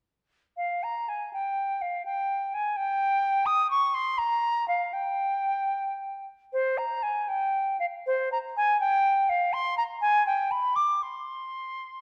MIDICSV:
0, 0, Header, 1, 2, 480
1, 0, Start_track
1, 0, Tempo, 550964
1, 494, Time_signature, 6, 3, 24, 8
1, 494, Tempo, 505902
1, 1454, Tempo, 475436
1, 4334, Tempo, 519031
1, 7694, Tempo, 489396
1, 10094, Tempo, 518135
1, 11482, End_track
2, 0, Start_track
2, 0, Title_t, "Flute"
2, 0, Program_c, 0, 73
2, 494, Note_on_c, 0, 77, 68
2, 744, Note_on_c, 0, 82, 67
2, 758, Note_off_c, 0, 77, 0
2, 984, Note_on_c, 0, 80, 65
2, 999, Note_off_c, 0, 82, 0
2, 1212, Note_off_c, 0, 80, 0
2, 1218, Note_on_c, 0, 79, 67
2, 1691, Note_on_c, 0, 77, 68
2, 1706, Note_off_c, 0, 79, 0
2, 1925, Note_off_c, 0, 77, 0
2, 1931, Note_on_c, 0, 79, 74
2, 2421, Note_on_c, 0, 80, 78
2, 2436, Note_off_c, 0, 79, 0
2, 2650, Note_on_c, 0, 79, 90
2, 2665, Note_off_c, 0, 80, 0
2, 3350, Note_on_c, 0, 87, 106
2, 3365, Note_off_c, 0, 79, 0
2, 3590, Note_off_c, 0, 87, 0
2, 3597, Note_on_c, 0, 85, 102
2, 3837, Note_on_c, 0, 84, 99
2, 3853, Note_off_c, 0, 85, 0
2, 4078, Note_on_c, 0, 82, 97
2, 4093, Note_off_c, 0, 84, 0
2, 4557, Note_off_c, 0, 82, 0
2, 4563, Note_on_c, 0, 77, 77
2, 4794, Note_on_c, 0, 79, 71
2, 4807, Note_off_c, 0, 77, 0
2, 6017, Note_off_c, 0, 79, 0
2, 6272, Note_on_c, 0, 72, 78
2, 6501, Note_on_c, 0, 82, 69
2, 6515, Note_off_c, 0, 72, 0
2, 6733, Note_on_c, 0, 80, 71
2, 6747, Note_off_c, 0, 82, 0
2, 6969, Note_on_c, 0, 79, 75
2, 6983, Note_off_c, 0, 80, 0
2, 7438, Note_off_c, 0, 79, 0
2, 7443, Note_on_c, 0, 77, 79
2, 7500, Note_off_c, 0, 77, 0
2, 7693, Note_on_c, 0, 72, 90
2, 7936, Note_off_c, 0, 72, 0
2, 7942, Note_on_c, 0, 82, 85
2, 8001, Note_off_c, 0, 82, 0
2, 8186, Note_on_c, 0, 80, 98
2, 8410, Note_off_c, 0, 80, 0
2, 8416, Note_on_c, 0, 79, 97
2, 8895, Note_on_c, 0, 77, 96
2, 8910, Note_off_c, 0, 79, 0
2, 9129, Note_on_c, 0, 84, 103
2, 9144, Note_off_c, 0, 77, 0
2, 9362, Note_off_c, 0, 84, 0
2, 9368, Note_on_c, 0, 82, 98
2, 9427, Note_off_c, 0, 82, 0
2, 9602, Note_on_c, 0, 80, 94
2, 9843, Note_off_c, 0, 80, 0
2, 9851, Note_on_c, 0, 79, 87
2, 10091, Note_on_c, 0, 83, 87
2, 10105, Note_off_c, 0, 79, 0
2, 10319, Note_on_c, 0, 86, 78
2, 10333, Note_off_c, 0, 83, 0
2, 10569, Note_on_c, 0, 84, 68
2, 10582, Note_off_c, 0, 86, 0
2, 11482, Note_off_c, 0, 84, 0
2, 11482, End_track
0, 0, End_of_file